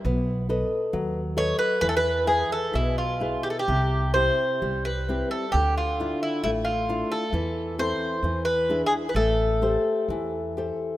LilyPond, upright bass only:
\new Staff \with { instrumentName = "Upright bass" } { \clef bass \time 2/4 \key a \minor \tempo 4 = 66 b,,4 dis,4 | e,4 b,,4 | c,4 c,4 | d,4 a,,4 |
e,4 e,4 | a,,4 e,4 | }